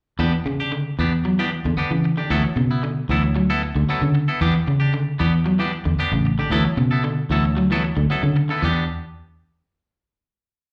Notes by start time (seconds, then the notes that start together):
0.19 E2 E3 B3 D4 G4
0.33 muted clean electric guitar stroke
0.46 C#3, muted clean electric guitar stroke
0.60 D4 G4
0.72 D3, muted clean electric guitar stroke
0.99 E2 E3 B3 D4 G4
1.12 muted clean electric guitar stroke
1.25 F#3, muted clean electric guitar stroke
1.39 E3 B3 D4 G4
1.51 muted clean electric guitar stroke
1.65 E2 D3
1.77 B3 D4 G4, muted fingered electric bass stroke
1.91 C#3 E3, muted clean electric guitar stroke
2.05 muted clean electric guitar stroke
2.17 D3 D4 G4
2.30 D2 E3 F#3 B3 E4 A4
2.44 muted clean electric guitar stroke
2.56 B2 C#3, muted clean electric guitar stroke
2.71 B3 E4
2.83 D3, muted clean electric guitar stroke
3.09 D2 E3 F#3 B3 E4 A4
3.23 muted clean electric guitar stroke
3.36 F#3, muted clean electric guitar stroke
3.50 B3 E4 A4
3.63 muted clean electric guitar stroke
3.75 D2 D3
3.89 F#3 B3 E4 A4
4.02 C#3 D3, muted clean electric guitar stroke
4.15 muted clean electric guitar stroke
4.28 B3 E4 A4
4.41 E2 E3 B3 D4 G4
4.55 muted clean electric guitar stroke
4.67 C#3, muted clean electric guitar stroke
4.80 D4 G4
4.94 D3, muted clean electric guitar stroke
5.19 E2 E3 B3 D4 G4
5.34 muted clean electric guitar stroke
5.46 F#3, muted clean electric guitar stroke
5.59 E3 B3 D4 G4
5.73 muted clean electric guitar stroke
5.85 E2 D3
5.99 B3 D4 G4, muted fingered electric bass stroke
6.12 A1 C#3, muted clean electric guitar stroke
6.26 muted clean electric guitar stroke
6.39 D3 D4 G4
6.50 D2 E3 F#3 B3 E4 A4
6.65 muted clean electric guitar stroke
6.77 B2 C#3, muted clean electric guitar stroke
6.91 B3 E4 A4
7.04 D3, muted clean electric guitar stroke
7.30 D2 E3 F#3 B3 E4 A4
7.45 muted clean electric guitar stroke
7.57 F#3, muted clean electric guitar stroke
7.71 E3 F#3 B3 E4 A4
7.84 muted clean electric guitar stroke
7.97 D2 D3
8.10 F#3 B3 E4 A4
8.23 C#3 D3, muted clean electric guitar stroke
8.36 muted clean electric guitar stroke
8.49 D3 B3 E4 A4
8.62 E2 E3 B3 D4 G4